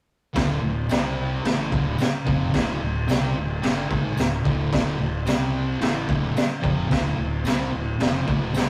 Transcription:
0.34 0.61 D1 medium
0.34 0.61 D2 medium
0.34 0.61 A2 loud
0.34 0.62 D3 loud
0.34 kick loud
0.34 snare loud
0.34 crash medium
0.62 0.88 D1 medium
0.62 0.84 D2 medium
0.62 0.85 A2 medium
0.89 1.40 C2 medium
0.89 1.43 C3 medium
0.89 1.44 G3 loud
0.89 1.44 C4 loud
0.89 snare loud
0.89 tambourine loud
0.89 crash medium
1.44 1.70 A1 medium
1.44 1.71 A2 loud
1.44 1.71 E3 medium
1.44 1.71 A3 loud
1.44 snare loud
1.44 crash medium
1.72 1.97 D1 loud
1.72 1.98 D2 loud
1.72 1.99 A2 medium
1.72 1.99 D3 loud
1.72 kick loud
1.98 muted distorted electric guitar stroke medium
1.98 muted fingered electric bass stroke soft
1.98 snare loud
1.98 tambourine medium
1.98 crash medium
2.25 2.52 F1 loud
2.25 2.52 F2 loud
2.25 2.53 C3 medium
2.25 2.53 F3 loud
2.25 kick loud
2.53 2.79 D1 medium
2.53 2.79 D2 loud
2.53 2.79 A2 loud
2.53 2.80 D3 loud
2.53 kick loud
2.53 snare loud
2.53 crash medium
2.80 3.06 D1 medium
2.80 3.02 D2 medium
2.80 3.02 A2 medium
3.07 3.34 C2 loud
3.07 3.34 C3 medium
3.07 3.35 G3 medium
3.07 3.35 C4 medium
3.07 snare loud
3.07 tambourine medium
3.07 crash medium
3.35 3.61 D1 medium
3.35 3.57 D2 medium
3.35 3.57 A2 medium
3.61 3.88 G1 medium
3.61 3.88 G2 medium
3.61 3.88 D3 medium
3.61 3.89 G3 loud
3.61 snare loud
3.61 crash medium
3.88 4.15 G#1 medium
3.88 4.15 G#2 medium
3.88 4.16 D#3 loud
3.88 4.16 G#3 loud
3.88 kick loud
4.16 4.43 D1 medium
4.16 4.38 D2 medium
4.16 4.38 A2 medium
4.16 snare loud
4.16 tambourine loud
4.16 crash medium
4.44 4.70 D1 medium
4.44 4.70 D2 medium
4.44 4.71 A2 loud
4.44 4.71 D3 loud
4.44 kick loud
4.72 4.97 D1 medium
4.72 4.98 D2 loud
4.72 4.98 A2 loud
4.72 4.99 D3 loud
4.72 kick loud
4.72 snare loud
4.72 crash medium
4.99 5.25 D1 medium
4.99 5.21 D2 medium
4.99 5.21 A2 medium
5.26 5.77 C2 loud
5.26 5.80 C3 loud
5.26 5.80 G3 loud
5.26 5.80 C4 loud
5.26 snare loud
5.26 tambourine medium
5.26 crash medium
5.80 6.06 A1 medium
5.80 6.07 A2 medium
5.80 6.07 E3 loud
5.80 6.08 A3 loud
5.80 snare loud
5.80 crash medium
6.08 6.34 D1 loud
6.08 6.34 D2 medium
6.08 6.35 A2 loud
6.08 6.35 D3 loud
6.08 kick loud
6.35 muted distorted electric guitar stroke medium
6.35 muted fingered electric bass stroke soft
6.35 snare loud
6.35 tambourine loud
6.35 crash medium
6.61 6.89 F1 loud
6.61 6.88 F2 medium
6.61 6.89 C3 loud
6.61 6.89 F3 loud
6.61 kick loud
6.89 7.16 D1 medium
6.89 7.16 D2 loud
6.89 7.16 A2 loud
6.89 7.17 D3 loud
6.89 kick loud
6.89 snare loud
6.89 crash medium
7.17 7.43 D1 medium
7.17 7.39 D2 medium
7.17 7.39 A2 medium
7.44 7.70 C2 loud
7.44 7.71 C3 medium
7.44 7.72 G3 loud
7.44 7.72 C4 loud
7.44 snare loud
7.44 tambourine medium
7.44 crash medium
7.72 7.98 D1 medium
7.72 7.94 D2 medium
7.72 7.94 A2 medium
7.99 8.25 F1 medium
7.99 8.26 F2 medium
7.99 8.26 C3 loud
7.99 8.27 F3 loud
7.99 snare loud
7.99 crash medium
8.26 8.53 D1 loud
8.26 8.53 D2 loud
8.26 8.54 A2 medium
8.26 8.54 D3 loud
8.26 kick loud
8.53 8.69 C2 medium
8.53 8.69 C3 medium
8.53 8.69 G3 loud
8.53 8.69 C4 loud
8.53 snare loud
8.53 tambourine loud
8.53 crash medium

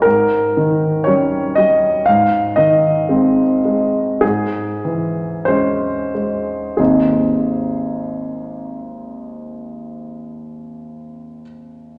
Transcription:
0.02 2.03 G#2 soft
0.02 1.05 A#4 medium
0.57 1.37 D#3 soft
1.04 1.53 G3 soft
1.04 1.53 C#4 soft
1.04 1.55 C#5 medium
1.55 2.07 G3 soft
1.55 2.06 D#5 medium
2.06 4.18 G#2 soft
2.06 2.57 F5 medium
2.56 3.41 D#3 soft
2.56 4.21 D#5 medium
3.09 3.59 G#3 soft
3.09 3.60 C4 soft
3.65 4.22 G#3 soft
4.21 6.75 G#2 soft
4.21 5.45 G#4 soft
4.85 5.86 E3 soft
5.45 6.10 G#3 soft
5.45 6.10 C#4 soft
5.45 6.13 C5 soft
6.15 6.78 G#3 soft
6.77 11.42 G#1 soft
6.77 11.41 D#2 soft
6.77 11.43 G#3 soft
6.77 11.43 C4 soft
6.77 11.43 D#4 soft
6.77 11.40 G#4 soft

